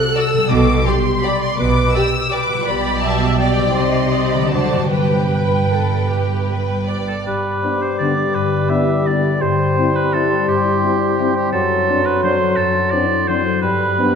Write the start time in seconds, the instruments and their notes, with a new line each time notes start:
Already playing: harp C3 A3 F#4 C5 D5, viola section A4, violin section F#6
0.16 violin section F#4 D5 E6
0.33 harp B2
0.38 harp G3
0.42 harp G4
0.46 harp D5
0.51 double bass section B1, cello section B2, violin section D6
0.86 violin section G4 D5 C6, viola section G4
1.23 violin section G4 D5 B5, viola section D5
1.42 violin section C6
1.58 double bass section B1, cello section B2, viola section B4, violin section D6
1.94 viola section G4, violin section G4 D5 E6
2.31 violin section G4 D5 D6, viola section B4
2.49 harp B2
2.53 harp G3
2.58 harp F4
2.62 harp D5
2.66 double bass section B1, cello section B2, violin section G4 D5 B5, viola section D5
3.02 viola section E5, violin section A5
3.39 violin section G4 D5 G5, viola section D5
3.57 harp C3
3.62 harp G3
3.66 harp D#4
3.71 harp C5, violin section C6
3.76 double bass section C2, cello section C3, violin section G4 D#5
4.12 violin section D5, viola section D#5
4.32 harp D3, violin section B5
4.38 harp F#3
4.43 harp D4
4.47 double bass section D2, harp C5, violin section A5
4.52 cello section D3, violin section F#4 C5, viola section D5
4.72 harp G2
4.77 harp G3
4.81 harp D4
4.86 harp B4
4.90 double bass section G1, cello section G2, violin section G4 B4 G5, viola section B4
5.30 violin section B4
5.71 violin section A4
6.10 violin section G4
6.47 violin section B4
6.88 violin section D5
7.08 oboe A4
7.26 harp G2, bassoon G3, oboe B4, flute D6
7.44 harp B4
7.62 french horn section B3 D4, harp C5
7.81 harp B4, oboe C5
7.98 harp D3, french horn section B3 D4, oboe D5
8.17 harp B4
8.34 harp G2, oboe B4
8.51 harp D4
8.69 french horn section B3 D4, harp E4, oboe E5
8.88 harp B4
9.06 harp D3, french horn section B3 D4, oboe D5
9.24 harp B4
9.40 harp G2, bassoon G3, oboe C5, flute C6
9.59 harp C5
9.76 french horn section C4 E4, harp D5
9.95 oboe B4, harp C5
10.13 harp G3, french horn section C4 E4, oboe A4
10.31 harp C5
10.48 harp G2, oboe G4
10.64 harp E4
10.83 french horn section C4 E4, harp F#4
11.01 harp C5
11.19 harp G3, french horn section C4 E4
11.36 oboe G4, harp C5
11.52 harp F#2, bassoon F#3, oboe A4, flute C6
11.69 harp A4
11.87 french horn section C4 D4, harp B4
12.04 harp A4, oboe B4
12.22 harp F#3, french horn section C4 D4, oboe C5
12.40 harp A4
12.56 harp F#2, oboe A4
12.74 harp D4
12.90 french horn section C4 D4, harp E4, oboe D5
13.10 harp A4
13.28 harp F#3, french horn section C4 D4, oboe C5
13.46 harp A4
13.62 harp G2, bassoon G3, oboe B4, flute B5
13.80 harp B4
13.98 french horn section B3 D4, harp C5